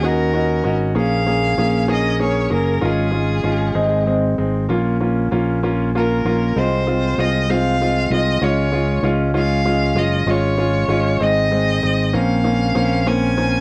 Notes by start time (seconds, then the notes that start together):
Already playing: D#2
0.03 C#4 D#4 F#4 A#4
0.34 C#4 D#4 F#4
0.64 G#1 C#4 D#4 F#4
0.95 A#1 A#3 C#4 G#4
1.01 F5
1.26 A#3 C#4 G#4
1.57 A#1 A#3 C#4 G#4
1.88 A#3 C#4 G#4
1.92 D#5
2.19 A#3 C#4 G#4 C#5
2.50 F#1 A#3 C#4 G#4 A#4
2.81 G#1 G#3 C#4 F4 G#4
3.11 G#3 C#4 F4
3.43 G#1 G#3 C#4 F4
3.74 G#1 G#3 C4 D#4
4.06 G#3 C4 D#4
4.38 G#1 G#3 C4 D#4
4.69 A#1 A#3 C#4 F4
5.00 A#3 C#4 F4
5.31 A#1 A#3 C#4 F4
5.63 A#3 C#4 F4
5.95 A#3 C#4 F4 A#4
6.25 A#1 A#3 C#4 F4
6.56 C2 G#3 C4 F4 C5
6.87 G#3 C4 F4
7.18 C2 G#3 C4 F4 D#5
7.49 G#3 C4 F4 F5
7.81 G#3 C4 F4
8.10 C2 G#3 C4 F4 D#5
8.41 C#2 G#3 C#4 F4 C#5
8.72 G#3 C#4 F4
9.03 C#2 G#3 C#4 F4
9.34 G#3 C#4 F4
9.38 F5
9.65 G#3 C#4 F4
9.95 F#1 G#3 C#4 F4 D#5
10.26 G#1 G#3 C#4 F4 C#5
10.57 G#3 C#4 F4
10.88 G#1 G#3 C#4 F4
11.20 G#1 G#3 C4 D#4 D#5
11.51 G#3 C4 D#4
11.83 G#1 G#3 C4 D#4
12.13 A#1 A#3 C4 C#4 F5
12.44 A#3 C4 C#4
12.75 A#1 A#3 C4 C#4
13.06 A#3 C4 C#4 G#5
13.37 A#3 C4 C#4